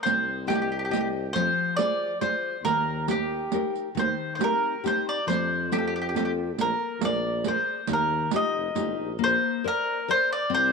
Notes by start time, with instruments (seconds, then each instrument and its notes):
0.03 tuba C2, nylon-string guitar C4, mandolin C5, riq
0.47 nylon-string guitar G4 C5 D#5, mandolin G4, riq
0.55 mandolin G4
0.62 mandolin G4
0.72 mandolin G4
0.79 mandolin G4
0.85 mandolin G4
0.91 nylon-string guitar G4 C5 D#5, mandolin G4, riq
1.01 mandolin G4
1.33 tuba F2, nylon-string guitar F3, mandolin C5, riq
1.77 nylon-string guitar F4 G#4 C5, mandolin D5, riq
2.21 nylon-string guitar F4 G#4 C5, mandolin C5, riq
2.63 tuba D#2, nylon-string guitar D#3, mandolin A#4, riq
3.07 nylon-string guitar D#4 G4 A#4, mandolin G4, riq
3.52 nylon-string guitar D#4 G4 A#4, riq
3.76 riq
3.95 tuba D#2, nylon-string guitar D#3, riq
3.99 mandolin C5
4.35 nylon-string guitar D#4, mandolin C5
4.40 nylon-string guitar C4 G4, riq
4.44 mandolin A#4
4.84 nylon-string guitar C4 D#4 G4, mandolin C5, riq
5.09 mandolin D5
5.27 tuba F2, nylon-string guitar F3, mandolin C5, riq
5.72 nylon-string guitar C4 F4 A4, mandolin G4, riq
5.78 mandolin G4
5.87 mandolin G4
5.96 mandolin G4
6.02 mandolin G4
6.09 mandolin G4
6.15 nylon-string guitar C4 F4 A4, mandolin G4, riq
6.25 mandolin G4
6.58 tuba A#1, nylon-string guitar A#3, mandolin A#4, riq
7.00 tuba A#1, nylon-string guitar A#3, riq
7.05 mandolin D5
7.44 nylon-string guitar G#4 A#4 D5, mandolin C5, riq
7.87 tuba D#2, nylon-string guitar D#3, riq
7.93 mandolin A#4
8.31 nylon-string guitar D#4 F4 G4, riq
8.36 mandolin D#5
8.54 tuba F1
8.75 tuba G1, nylon-string guitar D#4 F4 G4, riq
8.99 tuba A#1
9.19 tuba A#1, nylon-string guitar A#3
9.24 mandolin C5
9.64 nylon-string guitar A#4 C5 D5, mandolin A#4
10.08 nylon-string guitar A#4 C5 D5, mandolin C5
10.33 mandolin D5
10.50 tuba C2, nylon-string guitar C4
10.54 mandolin C5